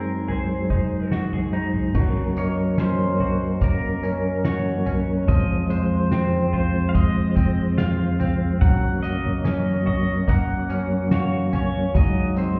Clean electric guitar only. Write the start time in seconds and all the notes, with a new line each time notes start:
Already playing: F#3 C4 G#4
0.28 G#4
0.70 D#4
1.12 F#4
1.33 G#4
1.53 D#4
1.95 F#3
2.37 A#3
2.78 C#4
3.20 F#4
3.61 A#3
4.03 C#4
4.45 F#4
4.86 C#4
5.28 F3
5.70 G#3
6.12 C4
6.53 F4
6.94 G#3
7.35 C4
7.78 F4
8.20 C4
8.62 F#3
9.03 A#3
9.45 C#4
9.86 F#4
10.28 A#3
10.70 C#4
11.11 F#4
11.53 C#4
11.95 F#3
12.37 C4